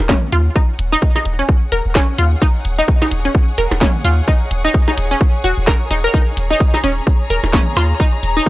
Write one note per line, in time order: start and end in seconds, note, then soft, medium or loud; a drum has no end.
0.00 0.14 D#1 medium
0.00 8.49 G#4 medium
0.00 8.49 C#5 medium
0.00 6.45 F#5 medium
0.09 0.12 C#4 loud
0.09 kick loud
0.09 snare loud
0.09 mid tom medium
0.32 0.49 D#2 medium
0.32 0.37 F4 medium
0.32 closed hi-hat medium
0.56 0.58 D#4 medium
0.56 kick loud
0.79 0.96 D#1 loud
0.79 closed hi-hat medium
0.92 0.96 D#4 loud
1.02 kick loud
1.16 1.19 D#4 medium
1.16 percussion blips medium
1.25 1.42 D#1 medium
1.25 closed hi-hat medium
1.39 1.44 C#4 medium
1.49 kick loud
1.72 1.81 D#1 medium
1.72 1.76 A#4 medium
1.72 closed hi-hat medium
1.85 2.00 D#1 medium
1.95 1.98 C#4 loud
1.95 kick loud
1.95 snare loud
2.18 2.35 D#2 medium
2.18 2.23 F4 medium
2.18 closed hi-hat medium
2.42 2.44 D#4 medium
2.42 kick loud
2.65 2.82 D#1 loud
2.65 closed hi-hat medium
2.78 2.82 D#4 loud
2.88 kick loud
3.02 3.05 D#4 medium
3.02 percussion blips medium
3.11 3.28 D#1 medium
3.11 closed hi-hat loud
3.25 3.30 C#4 medium
3.35 kick loud
3.58 3.67 D#1 medium
3.58 3.62 A#4 medium
3.58 closed hi-hat medium
3.71 3.86 D#1 medium
3.71 percussion blips medium
3.81 3.84 C#4 loud
3.81 kick loud
3.81 snare loud
3.81 mid tom medium
4.04 4.21 D#2 medium
4.04 4.09 F4 medium
4.04 closed hi-hat medium
4.28 4.30 D#4 medium
4.28 kick loud
4.51 4.68 D#1 medium
4.51 closed hi-hat medium
4.65 4.68 D#4 loud
4.74 kick loud
4.88 4.91 D#4 medium
4.88 percussion blips medium
4.98 5.14 D#1 medium
4.98 closed hi-hat loud
5.11 5.16 C#4 medium
5.21 kick loud
5.44 5.53 D#1 medium
5.44 5.51 F#4 medium
5.44 closed hi-hat medium
5.58 5.72 D#1 medium
5.67 5.70 A#4 loud
5.67 kick loud
5.67 snare loud
5.91 6.07 D#1 loud
5.91 5.93 D#4 medium
5.91 closed hi-hat medium
6.04 6.07 A#4 loud
6.14 6.16 D#4 medium
6.14 kick loud
6.14 cabasa medium
6.27 cabasa soft
6.37 6.54 D#1 loud
6.37 closed hi-hat medium
6.37 cabasa medium
6.42 8.49 A#5 medium
6.50 6.54 D#4 loud
6.50 cabasa soft
6.60 kick loud
6.60 cabasa soft
6.74 6.77 D#4 medium
6.74 percussion blips medium
6.74 cabasa soft
6.84 7.00 D#1 medium
6.84 6.90 C#4 medium
6.84 closed hi-hat medium
6.84 cabasa medium
6.97 cabasa soft
7.07 kick loud
7.07 cabasa medium
7.20 cabasa soft
7.30 7.39 D#1 medium
7.30 7.34 A#4 medium
7.30 closed hi-hat medium
7.30 cabasa medium
7.43 7.58 D#1 medium
7.43 percussion blips medium
7.43 cabasa soft
7.52 7.56 C#4 loud
7.52 kick loud
7.52 snare loud
7.52 mid tom medium
7.52 cabasa soft
7.67 cabasa soft
7.77 7.93 D#2 medium
7.77 7.81 F4 medium
7.77 closed hi-hat medium
7.77 cabasa medium
7.77 percussion blips medium
7.91 cabasa soft
8.00 8.02 D#4 medium
8.00 kick loud
8.00 cabasa medium
8.12 cabasa soft
8.23 8.40 D#1 loud
8.23 closed hi-hat medium
8.23 cabasa medium
8.37 8.40 D#4 loud
8.37 cabasa soft
8.46 cabasa medium